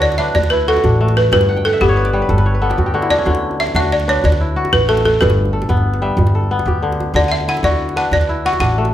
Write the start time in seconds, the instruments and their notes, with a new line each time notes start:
Already playing: upright bass D2, kora D3 D4 E4 F#4
0.02 balafon D5
0.12 djembe slap
0.18 kora D4 B4, balafon E5
0.35 upright bass D2, balafon D5, djembe slap, djembe tone, djembe bass
0.43 djembe slap
0.50 kora E4, balafon B4
0.68 kora F#4, balafon A4, djembe slap
0.77 djembe slap, djembe tone
0.83 upright bass A1, kora D4, djembe bass
1.00 kora A3, djembe slap
1.08 djembe slap
1.17 balafon B4, djembe tone
1.32 upright bass G1, kora G2, balafon B4, djembe bass
1.41 djembe slap
1.49 kora F#5
1.56 kora G5, djembe tone
1.65 balafon A4, kora F#5
1.73 kora E5
1.80 upright bass G1, kora B3 D5, balafon G4, djembe slap, djembe bass
1.89 kora C#5, djembe slap, djembe tone
1.97 kora B4
2.05 kora D5, djembe slap
2.13 kora G3 C#5
2.22 kora B4
2.29 upright bass G1, kora A4, djembe slap, djembe tone, djembe bass
2.38 kora B4, djembe slap
2.46 kora C#5
2.54 kora B4
2.61 kora B3 A4, djembe slap
2.70 kora G4, djembe slap, djembe tone
2.77 upright bass D2, kora F#4, djembe bass
2.86 kora G4
2.94 kora D3 F#4, djembe slap
3.02 kora E4, djembe slap
3.10 kora D4, balafon D5, djembe tone
3.19 kora C#4
3.26 upright bass D2, kora D3, djembe bass
3.35 djembe slap
3.51 djembe tone
3.60 balafon E5
3.67 djembe slap
3.75 upright bass D2, kora D4 F#4, balafon E5, djembe slap, djembe bass
3.83 djembe slap, djembe tone
3.92 balafon D5
4.00 djembe slap
4.08 kora D4 B4, balafon C#5
4.24 upright bass D2, balafon D5, djembe slap, djembe tone, djembe bass
4.32 djembe slap
4.40 kora E4
4.56 kora F#4, djembe slap
4.65 djembe slap, djembe tone
4.72 upright bass A1, balafon B4, djembe bass
4.89 kora A3, balafon A4
4.97 djembe slap
5.05 balafon A4, djembe tone
5.21 upright bass G1, kora G2, balafon B4, djembe bass
5.30 djembe slap
5.45 djembe slap, djembe tone
5.53 kora A4
5.62 djembe slap
5.69 upright bass G1, kora B3, djembe slap, djembe bass
5.77 djembe tone
5.94 djembe slap
6.02 kora G3 E5
6.17 upright bass G1, djembe tone, djembe bass
6.27 djembe slap
6.35 kora A4
6.43 djembe slap
6.51 kora B3, djembe slap
6.59 djembe slap, djembe tone
6.65 upright bass D2, kora G4, djembe bass
6.82 kora D3, djembe slap
6.92 djembe slap
7.00 djembe tone
7.14 upright bass D2, kora D3, balafon D5, djembe bass
7.24 djembe slap
7.28 balafon E5 F#5
7.41 djembe tone
7.48 kora E4, balafon F#5
7.57 djembe slap
7.63 upright bass D2, kora F#4, balafon D5, djembe slap, djembe bass
7.72 djembe slap, djembe tone
7.89 djembe slap
7.96 kora D4 B4, balafon F#5
8.11 upright bass D2, balafon D5, djembe slap, djembe tone, djembe bass
8.21 djembe slap
8.29 kora E4
8.45 kora F#4, balafon F#5, djembe slap
8.53 djembe slap, djembe tone
8.60 upright bass A1, kora D4, balafon F#5, djembe bass
8.77 kora A3, djembe slap
8.85 djembe slap